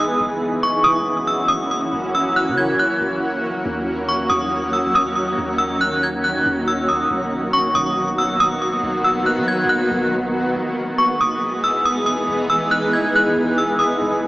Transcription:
0.00 0.17 E1 medium
0.00 3.61 E3 medium
0.00 0.17 G#3 medium
0.00 0.17 B3 medium
0.00 0.16 D#4 medium
0.00 0.17 G#4 medium
0.00 0.18 D#6 medium
0.20 0.82 F#1 loud
0.20 7.07 F#3 medium
0.20 7.07 A#3 medium
0.20 3.62 C#4 medium
0.20 7.07 F#4 medium
0.63 0.84 C#6 medium
0.84 1.89 F#1 loud
0.84 1.25 D#6 medium
1.28 1.48 E6 medium
1.48 1.69 D#6 medium
1.71 1.92 D#6 medium
1.93 2.48 F#1 loud
2.14 2.35 E6 medium
2.36 2.56 F#6 medium
2.47 2.75 C#3 loud
2.57 2.78 G#6 medium
2.74 2.99 F#1 loud
2.79 3.20 F#6 medium
3.01 3.63 F#1 loud
3.65 4.28 D#2 loud
3.65 7.07 D#3 medium
3.65 7.07 C#4 medium
4.09 4.29 C#6 medium
4.30 5.34 D#2 loud
4.30 4.70 D#6 medium
4.73 4.94 E6 medium
4.95 5.14 D#6 medium
5.15 5.36 D#6 medium
5.38 6.42 D#2 loud
5.58 5.79 E6 medium
5.81 6.01 F#6 loud
6.03 6.23 G#6 medium
6.24 6.65 F#6 medium
6.46 7.08 D#2 loud
6.68 6.88 E6 medium
6.89 7.09 D#6 medium
7.11 7.73 B1 loud
7.11 10.53 D#3 medium
7.11 10.53 F#3 medium
7.11 10.53 A#3 medium
7.11 10.53 B3 medium
7.11 10.53 F#4 medium
7.53 7.74 C#6 medium
7.75 8.79 B1 loud
7.75 8.16 D#6 medium
8.18 8.39 E6 medium
8.40 8.61 D#6 medium
8.62 8.82 D#6 medium
8.83 9.39 B1 loud
9.04 9.25 E6 medium
9.26 9.47 F#6 medium
9.37 9.66 F#3 loud
9.48 9.68 G#6 medium
9.64 9.90 B1 loud
9.69 10.10 F#6 medium
9.91 10.53 B1 loud
10.56 11.18 E1 loud
10.56 13.98 E3 medium
10.56 13.98 G#3 medium
10.56 13.98 B3 medium
10.56 13.98 D#4 medium
10.56 13.98 G#4 medium
10.98 11.19 C#6 medium
11.21 12.25 E1 loud
11.21 11.61 D#6 medium
11.64 11.84 E6 medium
11.85 12.05 D#6 medium
12.06 12.27 D#6 medium
12.29 13.32 E1 loud
12.50 12.70 E6 medium
12.71 12.92 F#6 medium
12.93 13.14 G#6 medium
13.16 13.56 F#6 medium
13.36 13.99 E1 loud
13.58 13.79 E6 medium
13.79 14.00 D#6 medium
14.01 14.28 F#1 loud
14.01 14.28 E3 medium
14.01 14.28 F#3 medium
14.01 14.28 A#3 medium
14.01 14.28 C#4 medium
14.01 14.28 F#4 medium

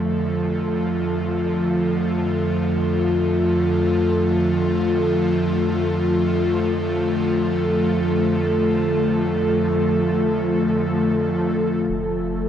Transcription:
0.00 11.90 F2 medium
0.00 11.90 D3 medium
0.00 12.49 F3 medium
0.00 12.49 A3 medium
0.00 12.49 F4 medium
0.00 12.49 A4 medium
11.89 12.49 F1 medium
11.89 12.49 C3 medium

